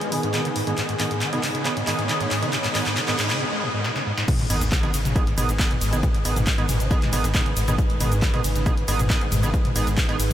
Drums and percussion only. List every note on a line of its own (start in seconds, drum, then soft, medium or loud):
0.01 closed hi-hat medium
0.01 mid tom medium
0.12 open hi-hat loud
0.23 closed hi-hat medium
0.34 clap medium
0.34 closed hi-hat medium
0.34 mid tom medium
0.45 closed hi-hat medium
0.56 open hi-hat loud
0.67 closed hi-hat medium
0.67 mid tom medium
0.78 clap medium
0.78 closed hi-hat medium
0.89 closed hi-hat medium
1.00 clap medium
1.00 open hi-hat loud
1.00 mid tom medium
1.11 closed hi-hat medium
1.21 clap medium
1.21 closed hi-hat medium
1.33 closed hi-hat medium
1.33 mid tom medium
1.43 clap medium
1.43 open hi-hat loud
1.55 closed hi-hat medium
1.66 clap medium
1.66 closed hi-hat medium
1.66 mid tom medium
1.77 closed hi-hat medium
1.87 clap medium
1.87 open hi-hat loud
1.99 closed hi-hat medium
1.99 mid tom medium
2.09 clap medium
2.09 closed hi-hat medium
2.21 closed hi-hat medium
2.31 clap medium
2.31 open hi-hat loud
2.31 mid tom medium
2.43 closed hi-hat medium
2.53 clap medium
2.53 closed hi-hat medium
2.64 clap medium
2.64 closed hi-hat medium
2.64 mid tom medium
2.75 clap medium
2.75 open hi-hat loud
2.86 clap medium
2.86 closed hi-hat medium
2.97 clap medium
2.97 closed hi-hat medium
2.97 mid tom medium
3.08 clap medium
3.08 closed hi-hat medium
3.19 clap loud
3.19 open hi-hat loud
3.30 clap medium
3.30 closed hi-hat medium
3.30 mid tom medium
3.84 snare medium
3.96 snare medium
4.18 snare medium
4.28 kick loud
4.28 closed hi-hat medium
4.28 crash loud
4.28 shaker soft
4.39 closed hi-hat medium
4.39 mid tom medium
4.50 open hi-hat loud
4.50 ride medium
4.50 shaker medium
4.61 closed hi-hat medium
4.61 shaker soft
4.72 kick loud
4.72 clap loud
4.72 closed hi-hat medium
4.72 mid tom medium
4.72 shaker soft
4.83 closed hi-hat medium
4.94 open hi-hat loud
4.94 ride medium
4.94 shaker medium
5.05 closed hi-hat medium
5.05 mid tom medium
5.05 shaker soft
5.16 kick loud
5.16 closed hi-hat medium
5.16 shaker soft
5.27 closed hi-hat medium
5.38 open hi-hat loud
5.38 mid tom medium
5.38 ride medium
5.38 shaker medium
5.49 closed hi-hat medium
5.49 shaker soft
5.59 kick loud
5.59 clap loud
5.59 closed hi-hat medium
5.59 shaker soft
5.71 closed hi-hat medium
5.71 mid tom medium
5.81 open hi-hat medium
5.81 ride medium
5.81 shaker medium
5.93 closed hi-hat medium
5.93 shaker soft
6.03 kick loud
6.03 closed hi-hat medium
6.03 mid tom medium
6.03 shaker soft
6.15 closed hi-hat medium
6.25 open hi-hat loud
6.25 ride medium
6.25 shaker medium
6.36 closed hi-hat medium
6.36 mid tom medium
6.36 shaker soft
6.47 kick loud
6.47 clap loud
6.47 closed hi-hat medium
6.47 shaker soft
6.58 closed hi-hat medium
6.69 open hi-hat loud
6.69 mid tom medium
6.69 ride medium
6.69 shaker medium
6.80 closed hi-hat medium
6.80 shaker soft
6.91 kick loud
6.91 closed hi-hat medium
6.91 shaker soft
7.02 clap soft
7.02 closed hi-hat medium
7.02 mid tom medium
7.13 open hi-hat loud
7.13 ride medium
7.13 shaker medium
7.24 closed hi-hat medium
7.24 shaker soft
7.35 kick loud
7.35 clap loud
7.35 closed hi-hat medium
7.35 mid tom medium
7.35 shaker soft
7.46 closed hi-hat medium
7.57 open hi-hat loud
7.57 ride medium
7.57 shaker medium
7.68 closed hi-hat medium
7.68 mid tom medium
7.68 shaker soft
7.78 kick loud
7.78 closed hi-hat medium
7.78 shaker soft
7.90 closed hi-hat medium
8.01 open hi-hat loud
8.01 mid tom medium
8.01 ride medium
8.01 shaker medium
8.12 closed hi-hat medium
8.12 shaker soft
8.22 kick loud
8.22 clap loud
8.22 closed hi-hat medium
8.22 shaker soft
8.34 closed hi-hat medium
8.34 mid tom medium
8.44 open hi-hat loud
8.44 ride medium
8.44 shaker medium
8.56 closed hi-hat medium
8.56 shaker soft
8.66 kick loud
8.66 closed hi-hat medium
8.66 mid tom medium
8.66 shaker soft
8.77 closed hi-hat medium
8.88 open hi-hat loud
8.88 ride medium
8.88 shaker medium
8.99 closed hi-hat medium
8.99 mid tom medium
8.99 shaker soft
9.10 kick loud
9.10 clap loud
9.10 closed hi-hat medium
9.10 shaker soft
9.21 closed hi-hat medium
9.32 open hi-hat loud
9.32 mid tom medium
9.32 ride medium
9.32 shaker medium
9.43 closed hi-hat medium
9.43 shaker soft
9.54 kick loud
9.54 closed hi-hat medium
9.54 shaker soft
9.65 closed hi-hat medium
9.65 mid tom medium
9.76 open hi-hat loud
9.76 ride medium
9.76 shaker medium
9.87 closed hi-hat medium
9.87 shaker soft
9.97 kick loud
9.97 clap loud
9.97 closed hi-hat medium
9.97 mid tom medium
9.97 shaker soft
10.09 closed hi-hat medium
10.20 open hi-hat loud
10.20 ride medium
10.20 shaker medium